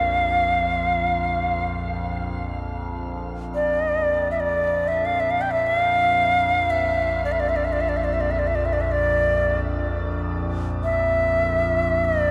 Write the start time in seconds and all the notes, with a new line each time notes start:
Already playing: A#1 F2 F5
2.28 A#1 F2
3.55 D5
4.31 E5
4.40 D5
4.88 E5
5.05 F5
5.20 E5
5.30 F5
5.41 G5
5.51 E5
5.67 F5
6.70 E5
7.25 D5
7.32 E5
7.40 D5
7.49 E5
7.56 D5
7.64 E5
7.72 D5
7.81 E5
7.89 D5
7.97 E5
8.04 D5
8.13 E5
8.21 D5
8.31 E5
8.39 D5
8.47 E5
8.55 D5
8.65 E5
8.73 D5
8.81 E5
8.91 D5
10.84 E5
12.05 D5